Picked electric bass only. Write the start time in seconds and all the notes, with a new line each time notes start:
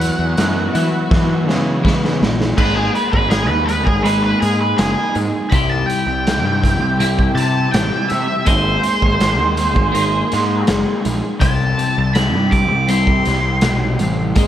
0.19 E2
0.38 F#2
0.75 E3
1.11 E3
1.48 C#3
2.22 A#1
2.58 G#1
3.13 G#1
3.50 D#2
3.87 G#1
4.43 G#2
4.79 F#1
5.16 G#2
5.52 C2
6.07 C2
6.44 G2
6.82 C2
7.35 C3
7.74 A1
8.12 C3
8.47 G#1
9.03 G#1
9.40 D#2
9.77 G#1
10.33 G#2
10.68 F#1
11.06 A#1
11.42 C2
11.98 C2
12.35 G2
12.73 C2
13.27 C2
13.63 B1
13.99 A1
14.37 G#1